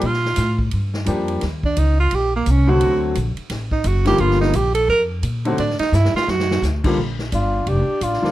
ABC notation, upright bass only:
X:1
M:4/4
L:1/8
Q:"Swing" 1/4=173
K:Gm
V:1 name="Upright bass" clef=bass
B,,2 A,,2 G,,2 F,,2 | E,,2 ^C,,2 B,,,2 =C,,2 | D,,2 B,,, z A,,,2 ^F,,,2 | G,,,2 B,,,2 F,,2 B,,2 |
A,, z G,, z ^F,,2 D,,2 | B,,,2 G,,,2 F,,, z A,,, z |]